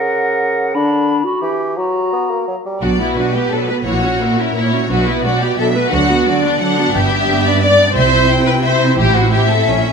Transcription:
Already playing: C#3 A#4 F#5
0.74 D3 D4 B5
1.25 F#4
1.42 E3 G4
1.77 F#3 F#4 A#5
2.13 B3
2.30 A#3
2.48 F#3
2.66 G3
2.82 B1 B2 F#3 D4 F#4 D5
2.99 B3 E4 F#4
3.16 B2 F#3 D4 F#4 B4
3.34 B3 F#4 G4
3.51 B2 F#3 D4 A4
3.69 B3 F#4 B4
3.86 A#1 A#2 A#3 E4 F#4 C#5
4.04 C#4 F#4
4.20 A#2 A#3 E4 A#4
4.37 C#4 E4 F#4
4.55 A#2 A#3 E4 C#5
4.72 C#4 F#4
4.89 B1 B2 F#3 D4 F#4 B4
5.07 B3 E4 F#4
5.24 B2 F#3 D4 F#4 D5
5.41 B3 F#4 G4
5.58 B2 F#3 D4 A4 E5
5.75 B3 F#4 B4
5.92 D2 D3 F#3 D4 F#4 F#5
6.09 B3 F#4
6.27 D3 F#3 D4 D5
6.43 B3 D4 F#4
6.60 D3 F#3 D4 F#5
6.78 B3 F#4
6.94 G1 G2 B3 D4 G4 E5
7.45 D5
7.62 D5
7.95 C2 C3 C4 E4 C5 E5
8.31 G5
8.46 B4
8.64 C5 E5
8.98 A1 A2 G4 C5
9.16 F#4
9.31 G4 E5
9.49 A4
9.67 A#1 A#2 C#4

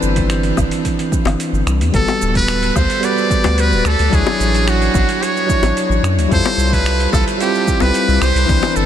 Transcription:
Already playing: E3 C4 D4 B4
0.03 G1, shaker
0.16 kick, closed hi-hat, shaker
0.30 finger snap, closed hi-hat, shaker
0.43 closed hi-hat, shaker
0.57 G1, kick, high bongo, low woodblock, shaker
0.71 closed hi-hat, shaker
0.85 kick, closed hi-hat, shaker
0.99 closed hi-hat, shaker
1.12 kick, shaker
1.25 G1, closed hi-hat, high bongo, low woodblock, shaker
1.40 closed hi-hat, shaker
1.53 G1, shaker
1.66 C2, finger snap, shaker
1.80 E2, closed hi-hat, shaker
1.92 G1 G3 B3 F#4 A4, kick, closed hi-hat, shaker
1.96 A4
2.08 high bongo, shaker
2.22 D1, shaker
2.35 B4, kick, closed hi-hat, shaker
2.48 finger snap, closed hi-hat, shaker
2.63 closed hi-hat, shaker
2.76 D2 C5, kick, high bongo, low woodblock, shaker
2.90 closed hi-hat, shaker
3.00 G3 B3 F#4, closed hi-hat, shaker
3.05 B4 D5
3.18 shaker
3.30 kick, shaker
3.44 D2, closed hi-hat, high bongo, shaker
3.58 B4, closed hi-hat, shaker
3.72 D1, shaker
3.85 D2 A4, finger snap, shaker
3.99 D2, closed hi-hat, shaker
4.10 D2 F#3 D4 E4, kick, closed hi-hat, shaker
4.14 G#4 C#5
4.27 high bongo, shaker
4.40 A1, shaker
4.54 closed hi-hat, shaker
4.68 F#4, finger snap, closed hi-hat, shaker
4.82 closed hi-hat, shaker
4.94 A1, kick, high bongo, shaker
5.09 closed hi-hat, shaker
5.23 C#5, closed hi-hat, shaker
5.37 shaker
5.46 F#3 D4 E4, kick, shaker
5.51 C#5
5.63 A1, closed hi-hat, high bongo, shaker
5.77 closed hi-hat, shaker
5.89 A1, shaker
6.03 F#2, finger snap, shaker
6.17 D2, closed hi-hat, shaker
6.28 F2 G3 E4 F4, kick, closed hi-hat
6.32 A4 C5, shaker
6.45 high bongo, shaker
6.57 C2, shaker
6.73 B4, kick, closed hi-hat, shaker
6.86 finger snap, closed hi-hat, shaker
7.00 closed hi-hat, shaker
7.13 C2 A4, kick, high bongo, low woodblock, shaker
7.28 closed hi-hat, shaker
7.38 G3 E4 F4 G4, closed hi-hat, shaker
7.42 C4
7.55 shaker
7.68 kick, shaker
7.80 C2 B4, closed hi-hat, high bongo, shaker
7.94 closed hi-hat, shaker
8.08 C2, shaker
8.21 C2 C5, finger snap, shaker
8.35 C2, closed hi-hat, shaker
8.46 C2 E3 C4 D4, kick, closed hi-hat, shaker
8.51 B4
8.63 high bongo, shaker
8.76 G1 A4, shaker

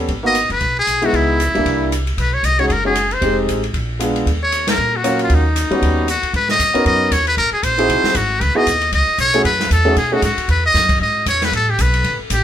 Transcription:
0.08 G#1, kick, ride
0.23 A#3 B3 D#4 F#4 D#5
0.35 hi-hat pedal, ride
0.50 F#1 B4, ride
0.60 B1, kick, ride
0.79 G#4
0.87 B1, hi-hat pedal, ride
1.02 G#3 B3 D#4 E4 F#4, ride
1.13 C#2 E4, kick, ride
1.40 hi-hat pedal, ride
1.48 D#2
1.55 B1 G3 A#3 D4 E4, ride
1.66 C2, kick, ride
1.92 hi-hat pedal, ride
2.07 ride
2.18 B1 B4, kick, ride
2.34 C#5
2.43 C2 D#5, hi-hat pedal, ride
2.59 G#3 C#4 D#4 F#4 C#5, ride
2.68 F#1 G#4, kick, ride
2.72 A#4
2.84 G#3 C#4 D#4 F#4 G#4
2.95 hi-hat pedal, ride
3.11 C5, ride
3.21 F1 G#3 C4 D#4 G4, kick, ride
3.47 A1, hi-hat pedal, ride
3.64 ride
3.74 A#1, kick, ride
3.99 G#3 B3 D4 F4, hi-hat pedal, ride
4.16 ride
4.26 D#2, kick, ride
4.43 C#5
4.52 hi-hat pedal, ride
4.67 A#4, snare, ride
4.77 A#2
4.96 F#4
5.04 F#3 A#3 C#4 F4, hi-hat pedal, ride
5.19 ride
5.23 F4
5.30 D#2, kick, ride
5.35 D#4
5.56 hi-hat pedal, ride
5.70 G3 B3 C#4 F#4, muted upright bass stroke, ride
5.82 D#2, kick, ride
6.08 F#4, hi-hat pedal, ride
6.22 muted upright bass stroke, ride
6.33 G#2 B4, kick, ride
6.49 D#5, snare
6.59 E2, kick, hi-hat pedal, ride
6.74 B3 C#4 D#4 F#4 A#4, muted upright bass stroke, ride
6.85 F#2 D#5, kick, ride
7.11 D#2 C#5, kick, hi-hat pedal, ride
7.27 B4, ride
7.37 G#1 A#4, kick, ride
7.51 G#4, muted upright bass stroke
7.63 A#1 C5, kick, hi-hat pedal, ride
7.78 C4 D#4 E4 F#4 G#4, ride
7.89 C2, kick, ride
8.03 muted upright bass stroke, snare
8.15 G#1 F#4, kick, hi-hat pedal, ride
8.41 C#2 B4, kick, ride
8.55 B3 D#4 E4 F#4 G#4 D#5, muted upright bass stroke
8.66 D#2, kick, hi-hat pedal, ride
8.81 ride
8.92 C#2 D#5, kick, ride
9.07 muted upright bass stroke
9.18 B1 C#5, kick, hi-hat pedal, ride
9.34 A3 C#4 E4 F#4 G#4, ride
9.45 F#2 B4, kick, ride
9.60 snare
9.71 E2 A4, kick, hi-hat pedal, ride
9.85 A3 C#4 D#4 F#4 G#4
9.96 B2 G#4, kick, ride
10.12 A3 C#4 D#4 F#4 G#4
10.22 G#2 F#4, kick, hi-hat pedal, ride
10.37 muted upright bass stroke, ride
10.48 E2 B4, kick, ride
10.66 D#5
10.74 F#2, kick, snare, hi-hat pedal, ride
10.89 kick, ride
11.00 G#2 D#5, kick
11.26 E2 C#5, kick, hi-hat pedal, ride
11.42 B4, snare, ride
11.52 A1 A4, kick, ride
11.70 G4
11.78 B1 B4, kick, hi-hat pedal, ride
11.94 ride
12.04 G1, kick, ride
12.19 muted upright bass stroke
12.30 A1 G4, kick, hi-hat pedal, ride

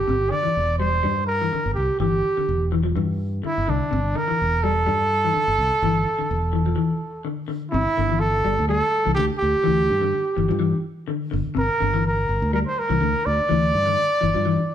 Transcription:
Already playing: G4
0.08 G1 C3
0.30 D3 D5
0.43 E3, muted fingered electric bass stroke
0.57 E1
0.78 G3 C5
1.03 G2 G3
1.26 A#4
1.41 E3
1.53 D3, muted fingered electric bass stroke
1.66 G1
1.74 C2 G4
2.00 G1 E3 G4
2.37 D3, muted fingered electric bass stroke
2.49 E1
2.72 E3
2.83 F3
2.96 G2 E3
3.43 D3 E4, muted fingered electric bass stroke
3.58 G1
3.67 C2 D3 D4
3.91 G1 C3
4.15 D3 A#4
4.28 E3, muted fingered electric bass stroke
4.42 E1
4.63 G3 A4
4.86 G2 G3
5.25 E3
5.34 D3, muted fingered electric bass stroke
5.48 G1
5.58 C2
5.82 G1 E3
6.19 D3, muted fingered electric bass stroke
6.31 E1
6.53 E3
6.66 F3
6.76 E3
7.25 D3
7.48 D3
7.71 G1 C3 E4
7.97 G1 D3
8.10 E3
8.20 A4
8.45 G1 G3
8.59 D2
8.68 G3 A4
9.05 C2 E3
9.15 D2 D3 G4
9.37 G4
9.42 D2
9.64 D2 E3
9.90 G2
10.01 D3
10.37 G1 E3
10.49 G2 F3
10.60 E3
11.08 D3
11.31 G1 D3
11.47 muted fingered electric bass stroke
11.55 G1 C3 A#4
11.80 G1 D3
11.94 E3
12.06 A#4
12.29 G1
12.42 D2
12.53 G3 A#4
12.67 C5
12.79 A#4
12.89 C2 E3
13.01 D2 D3
13.26 D2 D5
13.40 muted fingered electric bass stroke
13.49 D2 E3
13.74 G2
13.86 D3
14.21 G1 E3
14.34 G2 F3
14.46 E3

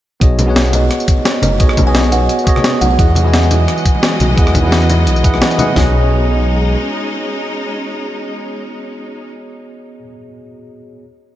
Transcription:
0.20 B1 B3 F#4 G#4 C#5 D#5, kick, closed hi-hat
0.39 closed hi-hat, tambourine, high conga
0.46 B3 F#4 G#4 C#5
0.51 F#5
0.56 snare, closed hi-hat
0.65 tambourine
0.73 D#5, closed hi-hat, tambourine, muted conga
0.91 cross-stick, closed hi-hat
1.00 tambourine
1.08 kick, closed hi-hat, tambourine
1.18 muted conga
1.25 snare, closed hi-hat
1.42 F#1 D#5, closed hi-hat, tambourine, high conga
1.59 B1 B3 F#4 G#4 C#5 D#5, kick, closed hi-hat
1.69 cross-stick
1.77 kick, closed hi-hat, tambourine, high conga
1.84 B3 F#4 G#4 C#5 G#5
1.89 D#5
1.95 snare, closed hi-hat
2.04 tambourine
2.12 F#5, closed hi-hat, tambourine, muted conga
2.29 closed hi-hat
2.39 tambourine
2.44 B3 F#4 G#4 C#5, kick, closed hi-hat, tambourine
2.49 D#5
2.56 cross-stick, muted conga, high conga
2.64 snare, closed hi-hat
2.81 B1 F#5, closed hi-hat, tambourine, muted conga, high conga
2.91 F#5
2.98 E2 E3 F#3 G#3 E4 G#4 D#5 F#5, kick, closed hi-hat
3.15 closed hi-hat, tambourine, high conga
3.23 E3 E4 G#4 D#5
3.28 G#5
3.34 snare, closed hi-hat
3.43 tambourine
3.51 closed hi-hat, tambourine, muted conga
3.68 cross-stick, closed hi-hat
3.78 tambourine
3.86 kick, closed hi-hat, tambourine
3.95 muted conga
4.03 snare, closed hi-hat
4.20 B1, closed hi-hat, tambourine, high conga
4.37 E2 E3 E4 G#4 D#5 F#5, kick, closed hi-hat
4.47 cross-stick, tambourine
4.55 kick, closed hi-hat, tambourine, high conga
4.62 E3 E4 G#4 D#5
4.67 F#5
4.72 snare, closed hi-hat
4.82 tambourine
4.90 closed hi-hat, tambourine, muted conga
5.07 B1, closed hi-hat
5.16 tambourine
5.23 E3 E4 G#4 D#5 F#5, kick, closed hi-hat, tambourine
5.33 B1, cross-stick, muted conga, high conga
5.42 snare, closed hi-hat
5.51 closed hi-hat, tambourine
5.58 E3 E4 G#4 D#5 F#5, closed hi-hat, tambourine, muted conga, high conga
5.73 B1 G#3 B3 C#4 D#4 F#4 G#4, snare, floor tom, open hi-hat
5.78 C#5 D#5

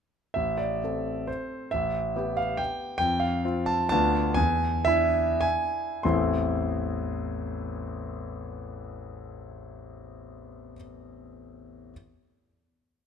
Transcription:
0.34 A1 E5
0.58 D5
0.84 C4 A4
1.27 C5
1.71 A1 E5
2.16 B3 G4
2.37 F5
2.57 G5
2.98 F2 G5
3.20 F5
3.45 C4 F4
3.66 A5
3.89 D2 B3 D4 F4 A5
4.34 E2 G#5
4.85 D4 E4 E5
5.41 G#5
6.03 A1 E2 E3 A3 C4 E4 C6

